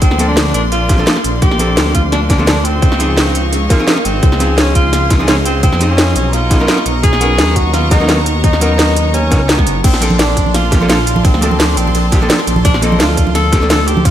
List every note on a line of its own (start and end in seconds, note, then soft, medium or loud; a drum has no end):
0.00 2.78 A#3 medium
0.00 0.27 C4 loud
0.00 2.78 D5 medium
0.00 0.70 A5 medium
0.00 2.78 C6 medium
0.00 kick loud
0.00 closed hi-hat medium
0.11 0.53 D2 loud
0.11 snare soft
0.18 0.87 F3 medium
0.18 0.87 A#3 medium
0.18 0.87 C4 medium
0.18 0.88 D4 medium
0.18 0.88 A4 medium
0.18 closed hi-hat medium
0.29 0.53 D4 loud
0.37 snare loud
0.37 closed hi-hat medium
0.54 1.06 A#1 medium
0.54 0.62 D4 medium
0.54 closed hi-hat medium
0.72 1.21 F4 loud
0.72 closed hi-hat medium
0.89 0.96 F3 medium
0.89 0.96 A#3 medium
0.89 0.97 C4 medium
0.89 0.97 D4 medium
0.89 0.97 G4 medium
0.89 kick loud
0.89 snare soft
0.89 closed hi-hat medium
0.98 1.05 F3 loud
0.98 1.05 A#3 medium
0.98 1.06 C4 medium
0.98 1.06 D4 medium
0.98 1.06 A4 loud
1.06 1.15 F3 loud
1.06 1.16 A#3 medium
1.06 1.16 C4 medium
1.06 1.16 D4 medium
1.06 1.16 A4 loud
1.06 snare loud
1.06 closed hi-hat medium
1.16 snare soft
1.24 1.79 A#1 loud
1.24 closed hi-hat loud
1.42 1.91 G4 loud
1.42 kick loud
1.42 closed hi-hat medium
1.51 snare soft
1.58 2.27 F3 medium
1.58 2.27 A#3 medium
1.58 2.28 C4 medium
1.58 2.28 D4 medium
1.58 2.28 A4 medium
1.58 closed hi-hat medium
1.77 2.81 D2 medium
1.77 snare loud
1.77 closed hi-hat medium
1.95 2.03 F4 loud
1.95 kick medium
1.95 closed hi-hat medium
2.12 2.20 D4 loud
2.12 snare soft
2.12 closed hi-hat medium
2.29 2.37 F3 medium
2.29 2.37 A#3 medium
2.29 2.37 C4 medium
2.29 2.46 D4 medium
2.29 2.37 D4 medium
2.29 2.37 G4 medium
2.29 kick loud
2.29 snare soft
2.29 closed hi-hat medium
2.38 2.45 F3 loud
2.38 2.46 A#3 medium
2.38 2.46 C4 medium
2.38 2.46 D4 loud
2.38 2.46 A4 loud
2.46 2.56 F3 medium
2.46 2.56 A#3 medium
2.46 2.56 C4 medium
2.46 2.56 D4 medium
2.46 2.67 D4 loud
2.46 2.56 A4 loud
2.46 snare loud
2.46 closed hi-hat medium
2.65 3.44 C4 loud
2.65 closed hi-hat medium
2.82 3.69 C#2 medium
2.82 6.30 G#4 medium
2.82 9.80 D#5 medium
2.82 6.30 F5 medium
2.82 4.21 C#6 medium
2.82 kick loud
2.82 closed hi-hat medium
2.92 snare soft
2.99 3.68 C#3 medium
2.99 3.68 F3 medium
2.99 3.68 C4 medium
2.99 3.68 D#4 medium
2.99 3.69 G#4 medium
2.99 closed hi-hat medium
3.18 snare loud
3.18 closed hi-hat medium
3.35 closed hi-hat medium
3.53 closed hi-hat medium
3.69 3.77 F3 medium
3.69 4.07 A#3 loud
3.69 3.77 C4 medium
3.69 3.77 C#4 medium
3.69 3.77 D#4 medium
3.69 3.78 F4 medium
3.69 kick loud
3.69 snare soft
3.69 closed hi-hat medium
3.79 3.86 F3 medium
3.79 3.86 C4 medium
3.79 3.86 C#4 medium
3.79 3.87 D#4 medium
3.79 3.87 G#4 loud
3.87 3.96 F3 medium
3.87 3.96 C4 medium
3.87 3.96 C#4 medium
3.87 3.97 D#4 medium
3.87 3.97 G#4 loud
3.87 snare loud
3.87 closed hi-hat medium
3.97 snare soft
4.05 4.21 G#1 medium
4.05 4.57 C4 loud
4.05 closed hi-hat medium
4.23 5.44 C#2 loud
4.23 6.31 C6 medium
4.23 kick loud
4.23 closed hi-hat medium
4.32 snare soft
4.39 5.08 F3 medium
4.39 5.08 C4 medium
4.39 5.09 C#4 medium
4.39 5.09 D#4 medium
4.39 5.09 G#4 medium
4.39 closed hi-hat medium
4.58 4.74 C#4 loud
4.58 snare loud
4.58 closed hi-hat medium
4.75 5.08 F4 loud
4.75 kick medium
4.75 closed hi-hat medium
4.93 snare soft
4.93 closed hi-hat medium
5.10 5.17 F3 medium
5.10 5.18 C4 medium
5.10 5.18 C#4 medium
5.10 5.18 D#4 medium
5.10 5.18 F4 medium
5.10 kick loud
5.10 snare soft
5.10 closed hi-hat medium
5.19 5.26 F3 loud
5.19 5.27 C4 medium
5.19 5.27 C#4 medium
5.19 5.27 D#4 medium
5.19 5.27 G#4 loud
5.27 5.37 F3 loud
5.27 5.37 C4 medium
5.27 5.36 C#4 loud
5.27 5.37 C#4 medium
5.27 5.37 D#4 medium
5.27 5.37 G#4 loud
5.27 snare loud
5.27 closed hi-hat medium
5.45 5.71 C#2 medium
5.45 5.62 C4 loud
5.45 closed hi-hat medium
5.63 5.92 C4 loud
5.63 kick loud
5.63 closed hi-hat medium
5.72 6.14 F2 loud
5.72 snare soft
5.79 6.32 F3 medium
5.79 6.32 C4 medium
5.79 6.32 C#4 medium
5.79 6.33 D#4 medium
5.79 6.33 G#4 medium
5.79 closed hi-hat medium
5.90 6.15 C#4 loud
5.98 snare loud
5.98 closed hi-hat medium
6.16 6.67 B1 medium
6.16 6.35 C#4 loud
6.16 closed hi-hat medium
6.33 9.81 B3 medium
6.33 6.86 F4 loud
6.33 9.81 A#5 medium
6.33 9.81 C#6 medium
6.33 closed hi-hat medium
6.50 6.58 F#3 medium
6.50 6.58 B3 medium
6.50 6.58 C#4 medium
6.50 6.58 D#4 medium
6.50 6.58 G#4 medium
6.50 kick loud
6.50 snare soft
6.50 closed hi-hat loud
6.60 6.67 F#3 medium
6.60 6.67 B3 medium
6.60 6.67 C#4 medium
6.60 6.67 D#4 medium
6.60 6.68 A#4 loud
6.67 6.77 F#3 medium
6.67 6.77 B3 medium
6.67 6.77 C#4 medium
6.67 6.77 D#4 medium
6.67 6.77 A#4 loud
6.67 snare loud
6.67 closed hi-hat medium
6.78 snare soft
6.86 7.40 B1 loud
6.86 closed hi-hat medium
7.03 7.58 G#4 loud
7.03 kick loud
7.03 closed hi-hat medium
7.13 snare soft
7.20 7.89 F#3 medium
7.20 7.89 B3 medium
7.20 7.89 C#4 medium
7.20 7.90 D#4 medium
7.20 7.90 A#4 medium
7.20 closed hi-hat loud
7.39 9.30 D#2 medium
7.39 snare loud
7.39 closed hi-hat medium
7.56 7.73 F#4 loud
7.56 kick medium
7.56 closed hi-hat loud
7.74 7.90 F4 loud
7.74 snare soft
7.74 closed hi-hat medium
7.90 7.98 F#3 medium
7.90 7.98 B3 medium
7.90 7.98 C#4 medium
7.90 8.24 D#4 loud
7.90 7.99 D#4 medium
7.90 7.99 G#4 medium
7.90 kick loud
7.90 snare soft
7.90 closed hi-hat loud
8.00 8.07 F#3 medium
8.00 8.07 B3 medium
8.00 8.07 C#4 medium
8.00 8.08 D#4 medium
8.00 8.08 A#4 loud
8.08 8.17 F#3 loud
8.08 8.17 B3 medium
8.08 8.17 C#4 medium
8.08 8.18 D#4 medium
8.08 8.18 A#4 loud
8.08 snare loud
8.08 closed hi-hat medium
8.26 closed hi-hat loud
8.44 8.60 D#4 loud
8.44 kick loud
8.44 closed hi-hat medium
8.53 snare soft
8.60 9.29 F#3 medium
8.60 9.29 B3 medium
8.60 9.30 C#4 medium
8.60 9.10 D#4 loud
8.60 9.30 D#4 medium
8.60 9.30 A#4 medium
8.60 closed hi-hat loud
8.79 snare loud
8.79 closed hi-hat medium
8.96 closed hi-hat loud
9.14 9.51 C#4 loud
9.14 closed hi-hat medium
9.31 9.65 C#2 medium
9.31 9.40 F#3 medium
9.31 9.40 B3 medium
9.31 9.40 C#4 medium
9.31 9.40 D#4 medium
9.31 9.41 A#4 medium
9.31 kick loud
9.31 snare soft
9.31 closed hi-hat loud
9.49 9.76 B3 loud
9.49 snare loud
9.49 closed hi-hat medium
9.59 kick medium
9.59 snare soft
9.67 9.83 F#1 medium
9.67 closed hi-hat loud
9.84 11.06 A#1 loud
9.84 14.01 A#3 medium
9.84 10.17 C4 loud
9.84 14.01 D5 medium
9.84 14.01 A5 medium
9.84 14.01 C6 medium
9.84 kick loud
9.84 closed hi-hat medium
9.84 crash medium
9.84 ride medium
9.94 snare soft
10.00 10.69 F3 medium
10.00 10.70 A#3 medium
10.00 10.70 C4 medium
10.00 10.70 D4 medium
10.00 10.71 A4 medium
10.00 closed hi-hat loud
10.10 high conga medium
10.19 10.52 D4 loud
10.19 snare loud
10.19 closed hi-hat medium
10.19 ride medium
10.37 kick medium
10.37 closed hi-hat loud
10.46 high conga medium
10.54 10.87 F4 loud
10.54 snare soft
10.54 closed hi-hat medium
10.54 ride medium
10.71 10.79 F3 medium
10.71 10.79 A#3 medium
10.71 10.79 C4 medium
10.71 10.79 D4 medium
10.71 10.79 G4 medium
10.71 kick loud
10.71 snare soft
10.71 closed hi-hat loud
10.81 10.88 F3 loud
10.81 10.88 A#3 medium
10.81 10.88 C4 medium
10.81 10.88 D4 medium
10.81 10.88 A4 loud
10.88 10.98 F3 medium
10.88 10.98 A#3 medium
10.88 10.98 C4 medium
10.88 10.98 D4 medium
10.88 11.26 F4 loud
10.88 10.98 A4 loud
10.88 snare loud
10.88 closed hi-hat medium
10.88 ride medium
11.07 11.32 A#1 medium
11.07 closed hi-hat loud
11.16 high conga medium
11.24 11.61 C4 loud
11.24 kick loud
11.24 closed hi-hat medium
11.24 ride medium
11.34 11.76 D2 loud
11.34 snare soft
11.41 12.10 F3 medium
11.41 12.10 A#3 medium
11.41 12.10 C4 medium
11.41 12.11 D4 medium
11.41 12.11 A4 medium
11.41 closed hi-hat medium
11.51 high conga medium
11.59 11.79 D4 loud
11.59 snare loud
11.59 closed hi-hat medium
11.59 ride medium
11.77 12.28 A#1 medium
11.77 12.30 C4 medium
11.77 closed hi-hat medium
11.88 high conga medium
11.95 closed hi-hat medium
11.95 ride medium
12.12 12.19 F3 medium
12.12 12.19 A#3 medium
12.12 12.19 C4 medium
12.12 12.20 D4 medium
12.12 12.20 G4 medium
12.12 kick loud
12.12 snare soft
12.12 closed hi-hat loud
12.21 12.28 F3 medium
12.21 12.28 A#3 medium
12.21 12.29 C4 medium
12.21 12.29 D4 medium
12.21 12.29 A4 loud
12.29 12.38 F3 medium
12.29 12.38 A#3 medium
12.29 12.38 C4 medium
12.29 12.39 D4 medium
12.29 12.39 A4 loud
12.29 snare loud
12.29 closed hi-hat medium
12.29 ride medium
12.39 snare soft
12.47 13.01 A#1 loud
12.47 closed hi-hat medium
12.56 high conga loud
12.65 12.84 D4 loud
12.65 kick loud
12.65 closed hi-hat medium
12.65 ride medium
12.74 snare soft
12.81 13.50 F3 medium
12.81 13.50 A#3 medium
12.81 13.51 C4 medium
12.81 13.51 D4 medium
12.81 13.01 D#4 loud
12.81 13.51 A4 medium
12.81 closed hi-hat medium
12.92 high conga medium
13.00 14.07 D2 medium
13.00 13.34 F4 loud
13.00 snare loud
13.00 closed hi-hat medium
13.00 ride medium
13.17 kick medium
13.17 closed hi-hat medium
13.27 high conga medium
13.35 13.68 A4 loud
13.35 snare soft
13.35 closed hi-hat medium
13.35 ride medium
13.52 13.59 F3 medium
13.52 13.60 A#3 medium
13.52 13.60 C4 medium
13.52 13.60 D4 medium
13.52 13.60 G4 medium
13.52 kick loud
13.52 snare soft
13.52 closed hi-hat medium
13.61 13.68 F3 loud
13.61 13.69 A#3 medium
13.61 13.69 C4 medium
13.61 13.69 D4 medium
13.61 13.69 A4 loud
13.70 13.79 F3 medium
13.70 13.79 A#3 medium
13.70 13.79 C4 medium
13.70 13.79 D4 medium
13.70 13.89 A4 loud
13.70 13.79 A4 loud
13.70 snare loud
13.70 closed hi-hat medium
13.70 ride medium
13.88 14.07 G4 loud
13.88 closed hi-hat medium
13.97 high conga medium
14.05 14.11 C#2 medium
14.05 14.11 F4 loud
14.05 14.11 D#5 medium
14.05 14.11 F5 medium
14.05 14.11 C6 medium
14.05 14.11 C#6 medium
14.05 kick loud
14.05 closed hi-hat medium
14.05 ride medium